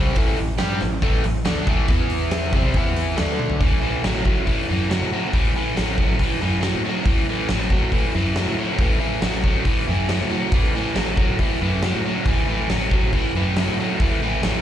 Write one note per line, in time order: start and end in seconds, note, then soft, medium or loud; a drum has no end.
0.00 0.15 C2 loud
0.00 0.16 C3 loud
0.00 0.16 G3 loud
0.00 0.17 C4 medium
0.15 0.36 A1 medium
0.15 0.38 A2 medium
0.15 0.38 E3 loud
0.15 0.39 A3 loud
0.15 kick loud
0.15 open hi-hat medium
0.37 0.60 A1 medium
0.37 0.56 A2 medium
0.37 0.56 E3 medium
0.37 open hi-hat medium
0.58 0.81 G2 medium
0.58 0.80 G3 medium
0.58 0.81 D4 medium
0.58 0.81 G4 loud
0.58 snare loud
0.58 open hi-hat medium
0.81 1.02 A1 medium
0.81 0.99 A2 medium
0.81 0.99 E3 medium
0.81 snare soft
0.81 open hi-hat medium
1.02 1.23 A1 medium
1.02 1.24 A2 medium
1.02 1.24 E3 medium
1.02 1.24 A3 loud
1.02 kick loud
1.02 open hi-hat medium
1.24 1.45 A1 medium
1.24 1.42 A2 medium
1.24 1.42 E3 medium
1.24 open hi-hat medium
1.45 1.66 D2 medium
1.45 1.66 D3 loud
1.45 1.66 A3 loud
1.45 1.67 D4 loud
1.45 snare loud
1.45 open hi-hat medium
1.67 1.88 A1 loud
1.67 1.88 A2 loud
1.67 1.88 E3 loud
1.67 1.89 A3 loud
1.67 kick medium
1.67 open hi-hat medium
1.88 2.49 E2 medium
1.88 2.53 E3 medium
1.88 2.53 B3 loud
1.88 2.54 E4 loud
1.88 kick loud
1.88 open hi-hat medium
2.10 open hi-hat medium
2.31 snare loud
2.31 open hi-hat medium
2.52 2.73 C2 loud
2.52 2.74 C3 medium
2.52 2.75 G3 medium
2.52 2.75 C4 medium
2.52 kick loud
2.52 open hi-hat medium
2.74 3.15 E2 medium
2.74 3.16 E3 medium
2.74 3.17 B3 medium
2.74 3.18 E4 loud
2.74 kick loud
2.74 open hi-hat medium
2.96 open hi-hat medium
3.16 3.58 D2 medium
3.16 3.60 D3 medium
3.16 3.60 A3 medium
3.16 3.61 D4 loud
3.16 snare loud
3.16 open hi-hat medium
3.39 high tom medium
3.50 floor tom medium
3.61 4.02 A1 medium
3.61 3.80 A2 medium
3.61 3.80 E3 medium
3.61 kick loud
3.61 open hi-hat medium
3.82 4.01 A2 medium
3.82 4.02 E3 medium
4.03 4.25 A1 medium
4.03 4.23 A2 medium
4.03 4.24 F#3 medium
4.03 snare loud
4.03 open hi-hat medium
4.24 4.44 A2 medium
4.24 4.45 F#3 medium
4.24 kick medium
4.37 4.57 A1 medium
4.46 4.66 A2 medium
4.46 4.66 E3 medium
4.46 kick medium
4.46 open hi-hat soft
4.69 5.00 F#2 medium
4.69 4.88 A2 medium
4.69 4.89 E3 medium
4.89 5.09 A2 medium
4.89 5.10 F#3 medium
4.89 snare loud
4.89 open hi-hat medium
5.02 5.22 A2 medium
5.13 5.32 A2 medium
5.13 5.32 F#3 medium
5.33 5.74 A1 medium
5.33 5.53 A2 medium
5.33 5.53 E3 medium
5.33 kick loud
5.33 open hi-hat medium
5.56 5.75 A2 medium
5.56 5.75 E3 medium
5.76 5.98 A1 medium
5.76 5.96 A2 medium
5.76 5.96 F#3 medium
5.76 snare loud
5.76 open hi-hat medium
5.98 6.18 A2 medium
5.98 6.18 F#3 medium
5.98 kick medium
6.11 6.31 A1 medium
6.19 6.40 A2 medium
6.19 6.40 E3 medium
6.19 kick medium
6.19 open hi-hat medium
6.41 6.73 F#2 medium
6.41 6.60 A2 medium
6.41 6.61 E3 medium
6.61 6.82 A2 medium
6.61 6.82 F#3 loud
6.61 snare loud
6.61 open hi-hat medium
6.74 6.95 A2 medium
6.85 7.04 A2 medium
6.85 7.05 F#3 medium
7.05 7.47 A1 loud
7.05 7.26 A2 medium
7.05 7.26 E3 medium
7.05 kick loud
7.05 open hi-hat medium
7.29 7.48 A2 medium
7.29 7.48 E3 medium
7.48 7.70 A1 medium
7.48 7.70 A2 medium
7.48 7.70 F#3 medium
7.48 snare loud
7.48 open hi-hat medium
7.70 7.91 A2 medium
7.70 7.91 F#3 medium
7.70 kick medium
7.83 8.03 A1 medium
7.92 8.12 A2 medium
7.92 8.13 E3 medium
7.92 kick medium
7.92 open hi-hat soft
8.15 8.46 F#2 medium
8.15 8.34 A2 medium
8.15 8.35 E3 medium
8.35 8.56 A2 medium
8.35 8.56 F#3 medium
8.35 snare loud
8.35 open hi-hat medium
8.48 8.68 A2 medium
8.58 8.78 A2 medium
8.58 8.78 F#3 medium
8.79 9.20 A1 medium
8.79 8.98 A2 medium
8.79 9.00 E3 medium
8.79 kick loud
8.79 open hi-hat medium
9.00 9.20 A2 medium
9.00 9.21 E3 medium
9.21 9.44 A1 medium
9.21 9.42 A2 medium
9.21 9.42 F#3 medium
9.21 snare loud
9.21 open hi-hat medium
9.44 9.64 A2 medium
9.44 9.64 F#3 medium
9.44 kick medium
9.56 9.76 A1 medium
9.65 9.86 A2 medium
9.65 9.86 E3 medium
9.65 kick medium
9.65 open hi-hat medium
9.88 10.19 F#2 medium
9.88 10.08 A2 medium
9.88 10.08 E3 medium
10.09 10.29 A2 medium
10.09 10.30 F#3 medium
10.09 snare loud
10.09 open hi-hat medium
10.21 10.41 A2 medium
10.30 10.51 A2 medium
10.30 10.51 F#3 medium
10.52 10.94 A1 medium
10.52 10.73 A2 medium
10.52 10.73 E3 medium
10.52 kick loud
10.52 open hi-hat medium
10.75 10.95 A2 medium
10.75 10.95 E3 medium
10.95 11.17 A1 medium
10.95 11.16 A2 medium
10.95 11.16 F#3 medium
10.95 snare loud
10.95 open hi-hat medium
11.17 11.38 A2 medium
11.17 11.38 F#3 medium
11.17 kick medium
11.30 11.50 A1 medium
11.39 11.59 A2 medium
11.39 11.60 E3 medium
11.39 kick medium
11.39 open hi-hat soft
11.61 11.92 F#2 medium
11.61 11.81 A2 medium
11.61 11.81 E3 medium
11.82 12.03 A2 medium
11.82 12.03 F#3 medium
11.82 snare loud
11.82 open hi-hat medium
11.95 12.15 A2 medium
12.06 12.25 A2 medium
12.06 12.25 F#3 medium
12.25 12.68 A1 medium
12.25 12.47 A2 medium
12.25 12.47 E3 medium
12.25 kick loud
12.25 open hi-hat medium
12.48 12.68 A2 medium
12.48 12.68 E3 medium
12.69 12.91 A1 medium
12.69 12.90 A2 medium
12.69 12.90 F#3 medium
12.69 snare loud
12.69 open hi-hat medium
12.91 13.11 A2 medium
12.91 13.12 F#3 medium
12.91 kick medium
13.03 13.23 A1 medium
13.13 13.33 A2 medium
13.13 13.33 E3 medium
13.13 kick medium
13.13 open hi-hat medium
13.34 13.65 F#2 medium
13.34 13.55 A2 medium
13.34 13.55 E3 medium
13.56 13.77 A2 medium
13.56 13.77 F#3 medium
13.56 snare loud
13.56 open hi-hat medium
13.68 13.88 A2 medium
13.80 13.99 A2 medium
13.80 13.99 F#3 medium
14.00 14.41 A1 medium
14.00 14.20 A2 medium
14.00 14.20 E3 medium
14.00 kick loud
14.00 open hi-hat medium
14.22 14.42 A2 medium
14.22 14.42 E3 medium
14.43 14.62 A1 medium
14.43 14.62 A2 medium
14.43 14.62 F#3 medium
14.43 snare loud
14.43 open hi-hat medium